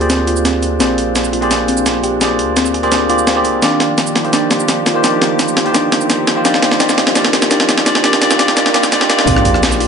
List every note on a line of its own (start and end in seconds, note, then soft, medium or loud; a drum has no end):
0.00 0.79 D2 loud
0.00 0.79 A#3 medium
0.00 3.58 C4 medium
0.00 9.23 D4 medium
0.00 0.80 F4 medium
0.00 0.80 G4 medium
0.00 0.80 G#4 medium
0.00 0.02 C5 medium
0.00 0.78 C5 medium
0.00 0.02 D5 medium
0.00 0.79 D5 loud
0.00 closed hi-hat soft
0.00 riser medium
0.09 0.19 C4 medium
0.09 snare medium
0.09 closed hi-hat medium
0.09 cabasa soft
0.27 0.43 F4 medium
0.27 closed hi-hat medium
0.27 cabasa soft
0.36 cabasa medium
0.45 0.62 C4 medium
0.45 snare medium
0.45 closed hi-hat medium
0.45 cabasa soft
0.63 closed hi-hat medium
0.63 cabasa soft
0.79 1.85 A#1 loud
0.79 1.39 A#3 medium
0.79 0.96 C4 medium
0.79 1.40 F4 medium
0.79 1.40 G4 medium
0.79 1.40 G#4 medium
0.79 1.40 C5 medium
0.79 1.41 D5 medium
0.79 snare medium
0.79 closed hi-hat medium
0.79 cabasa soft
0.98 closed hi-hat medium
1.15 snare medium
1.15 closed hi-hat medium
1.15 cabasa soft
1.24 cabasa medium
1.33 1.49 F4 medium
1.33 closed hi-hat medium
1.41 2.19 A#3 medium
1.41 2.19 F4 medium
1.41 2.19 G4 medium
1.41 2.19 G#4 medium
1.41 2.20 C5 medium
1.41 2.20 D5 loud
1.41 closed hi-hat soft
1.51 snare medium
1.51 closed hi-hat medium
1.51 cabasa soft
1.68 1.84 C4 medium
1.68 closed hi-hat medium
1.68 cabasa soft
1.77 cabasa medium
1.86 2.40 A#1 loud
1.86 snare medium
1.86 closed hi-hat medium
1.86 cabasa soft
2.03 2.19 G4 medium
2.03 closed hi-hat medium
2.03 cabasa soft
2.20 2.80 A#3 medium
2.20 2.81 F4 medium
2.20 2.81 G4 medium
2.20 2.81 G#4 medium
2.20 2.81 C5 medium
2.20 2.82 D5 medium
2.20 snare medium
2.20 closed hi-hat medium
2.20 cabasa soft
2.39 3.46 D2 loud
2.39 closed hi-hat medium
2.56 2.72 C4 loud
2.56 snare medium
2.56 closed hi-hat medium
2.56 cabasa soft
2.66 cabasa medium
2.74 2.90 G#4 medium
2.74 closed hi-hat medium
2.83 3.08 A#3 medium
2.83 3.08 F4 medium
2.83 3.08 G4 medium
2.83 3.08 G#4 medium
2.83 3.08 C5 medium
2.83 3.08 D5 loud
2.83 closed hi-hat soft
2.92 3.01 C4 medium
2.92 snare medium
2.92 closed hi-hat medium
2.92 cabasa soft
3.09 3.34 A#3 medium
3.09 3.26 F4 medium
3.09 3.34 F4 medium
3.09 3.34 G4 medium
3.09 3.34 G#4 medium
3.09 3.34 C5 medium
3.09 3.35 D5 medium
3.09 closed hi-hat medium
3.09 cabasa soft
3.18 cabasa medium
3.27 3.43 C5 medium
3.27 snare medium
3.27 closed hi-hat medium
3.27 cabasa soft
3.35 3.60 A#3 medium
3.35 3.60 F4 medium
3.35 3.60 G4 medium
3.35 3.60 G#4 medium
3.35 3.61 C5 medium
3.35 3.61 D5 medium
3.45 3.61 C2 medium
3.45 closed hi-hat medium
3.45 cabasa soft
3.61 4.67 D#1 loud
3.61 4.22 D#3 medium
3.61 9.23 F3 medium
3.61 4.22 A#3 medium
3.61 3.78 D4 medium
3.61 9.23 D#4 medium
3.61 4.22 F4 medium
3.61 9.23 G4 medium
3.61 4.23 G4 medium
3.61 4.23 D5 medium
3.61 snare medium
3.61 closed hi-hat medium
3.61 cabasa soft
3.80 snare medium
3.80 closed hi-hat medium
3.98 snare medium
3.98 closed hi-hat medium
3.98 cabasa soft
4.07 cabasa medium
4.15 4.31 F4 medium
4.15 snare medium
4.15 closed hi-hat medium
4.23 4.31 D#3 medium
4.23 4.31 A#3 medium
4.23 4.32 F4 medium
4.23 4.32 G4 medium
4.23 4.32 C5 loud
4.23 closed hi-hat soft
4.32 4.92 D#3 medium
4.32 4.92 A#3 medium
4.32 4.49 D4 medium
4.32 4.93 F4 medium
4.32 4.93 G4 medium
4.32 4.93 D5 medium
4.32 snare medium
4.32 closed hi-hat medium
4.32 cabasa soft
4.51 snare medium
4.51 closed hi-hat medium
4.51 cabasa soft
4.60 cabasa medium
4.68 5.23 D#1 loud
4.68 snare medium
4.68 closed hi-hat medium
4.68 cabasa soft
4.86 5.02 F4 medium
4.86 snare medium
4.86 closed hi-hat medium
4.86 cabasa soft
4.94 5.01 D#3 medium
4.94 5.02 A#3 medium
4.94 5.02 F4 medium
4.94 5.03 G4 medium
4.94 5.03 C5 loud
5.02 5.63 D#3 medium
5.02 5.63 A#3 medium
5.02 5.20 D4 medium
5.02 5.64 F4 medium
5.02 5.64 G4 medium
5.02 5.64 D5 medium
5.02 snare medium
5.02 closed hi-hat medium
5.02 cabasa medium
5.21 6.44 G1 loud
5.21 snare medium
5.21 closed hi-hat medium
5.39 snare medium
5.39 closed hi-hat medium
5.39 cabasa soft
5.48 cabasa medium
5.57 5.73 F4 medium
5.57 snare medium
5.57 closed hi-hat medium
5.64 5.72 D#3 medium
5.64 5.73 A#3 medium
5.64 5.73 F4 medium
5.64 5.73 G4 medium
5.64 5.74 C5 loud
5.64 closed hi-hat soft
5.73 6.33 D#3 medium
5.73 6.34 A#3 medium
5.73 5.90 D4 medium
5.73 6.34 F4 medium
5.73 6.34 G4 medium
5.73 6.35 D5 medium
5.73 snare medium
5.73 closed hi-hat medium
5.73 cabasa soft
5.92 snare medium
5.92 closed hi-hat medium
5.92 cabasa soft
6.01 cabasa medium
6.10 snare medium
6.10 closed hi-hat medium
6.10 cabasa soft
6.27 6.43 F4 medium
6.27 snare medium
6.27 closed hi-hat medium
6.27 cabasa soft
6.35 6.43 D#3 medium
6.35 6.43 A#3 medium
6.35 6.44 F4 medium
6.35 6.44 G4 medium
6.35 6.44 C5 loud
6.44 7.49 D#1 loud
6.44 6.78 D#3 medium
6.44 6.79 A#3 medium
6.44 6.61 D4 medium
6.44 6.79 F4 medium
6.44 6.79 G4 medium
6.44 6.80 D5 medium
6.44 snare medium
6.44 closed hi-hat loud
6.44 cabasa medium
6.54 snare medium
6.62 snare loud
6.62 closed hi-hat medium
6.71 snare medium
6.79 7.13 D#3 medium
6.79 7.14 A#3 medium
6.79 6.96 D4 medium
6.79 7.14 F4 medium
6.79 7.15 G4 medium
6.79 7.15 D5 medium
6.79 snare loud
6.79 closed hi-hat loud
6.79 cabasa medium
6.89 snare medium
6.89 cabasa medium
6.98 snare loud
6.98 closed hi-hat medium
7.07 snare medium
7.07 closed hi-hat soft
7.14 7.48 D#3 medium
7.14 7.49 A#3 medium
7.14 7.31 D4 medium
7.14 7.49 F4 medium
7.14 7.50 G4 medium
7.14 7.50 D5 medium
7.14 snare medium
7.14 closed hi-hat medium
7.14 cabasa soft
7.24 snare medium
7.33 snare loud
7.33 closed hi-hat medium
7.33 cabasa soft
7.42 snare medium
7.42 cabasa medium
7.49 8.05 D#1 loud
7.49 7.84 D#3 medium
7.49 7.84 A#3 medium
7.49 7.67 D4 medium
7.49 7.85 F4 medium
7.49 7.85 G4 medium
7.49 7.85 D5 medium
7.49 snare medium
7.49 closed hi-hat loud
7.49 cabasa medium
7.60 snare loud
7.69 snare loud
7.69 closed hi-hat medium
7.69 cabasa soft
7.78 snare medium
7.85 8.01 D#3 medium
7.85 8.02 A#3 medium
7.85 8.02 D4 medium
7.85 8.02 F4 medium
7.85 8.03 G4 medium
7.85 8.03 D5 loud
7.85 snare loud
7.85 closed hi-hat loud
7.85 cabasa medium
7.95 snare medium
8.02 9.26 G1 loud
8.02 8.19 D#3 medium
8.02 8.19 A#3 medium
8.02 8.20 D4 medium
8.02 8.20 F4 medium
8.02 8.20 G4 medium
8.02 8.21 D5 loud
8.02 snare loud
8.02 closed hi-hat medium
8.02 cabasa soft
8.13 snare medium
8.13 closed hi-hat soft
8.20 8.36 D#3 medium
8.20 8.37 A#3 medium
8.20 8.37 D4 medium
8.20 8.37 F4 medium
8.20 8.38 G4 medium
8.20 8.38 D5 loud
8.20 snare loud
8.20 closed hi-hat loud
8.20 cabasa medium
8.31 snare medium
8.31 cabasa medium
8.37 8.54 D#3 medium
8.37 8.55 A#3 medium
8.37 8.55 D4 medium
8.37 8.55 F4 medium
8.37 8.55 G4 medium
8.37 8.56 D5 medium
8.37 snare loud
8.37 closed hi-hat medium
8.37 cabasa soft
8.48 snare medium
8.48 closed hi-hat soft
8.55 8.72 D#3 medium
8.55 8.72 A#3 medium
8.55 8.73 D4 medium
8.55 8.73 F4 medium
8.55 8.73 G4 medium
8.55 8.73 D5 medium
8.55 snare loud
8.55 closed hi-hat loud
8.55 swell medium
8.55 cabasa medium
8.66 snare medium
8.66 closed hi-hat soft
8.73 8.89 D#3 medium
8.73 8.90 A#3 medium
8.73 8.90 D4 medium
8.73 8.91 F4 medium
8.73 8.91 G4 medium
8.73 8.91 D5 medium
8.73 snare loud
8.73 closed hi-hat medium
8.73 cabasa soft
8.83 snare medium
8.83 cabasa medium
8.91 9.07 D#3 medium
8.91 9.08 A#3 medium
8.91 9.08 D4 medium
8.91 9.08 F4 medium
8.91 9.09 G4 medium
8.91 9.09 D5 loud
8.91 snare loud
8.91 closed hi-hat medium
8.91 cabasa soft
9.01 snare loud
9.08 9.25 D#3 medium
9.08 9.25 A#3 medium
9.08 9.26 D4 medium
9.08 9.25 F4 medium
9.08 9.26 G4 medium
9.08 9.27 D5 loud
9.08 snare loud
9.08 closed hi-hat medium
9.08 cabasa soft
9.19 snare medium
9.26 9.88 A#1 loud
9.26 9.86 A#3 medium
9.26 9.43 C4 medium
9.26 9.88 C4 medium
9.26 9.88 D4 medium
9.26 9.87 F4 medium
9.26 9.87 G4 medium
9.26 9.87 G#4 medium
9.26 9.87 C5 medium
9.26 9.88 D5 medium
9.26 kick loud
9.26 closed hi-hat loud
9.26 closed hi-hat medium
9.26 sub drop medium
9.26 cabasa soft
9.36 cross-stick medium
9.45 kick medium
9.45 closed hi-hat medium
9.54 cross-stick soft
9.63 snare loud
9.63 closed hi-hat medium
9.63 open hi-hat medium
9.63 cabasa soft
9.72 closed hi-hat soft
9.72 cabasa medium
9.80 9.88 F4 medium
9.80 closed hi-hat medium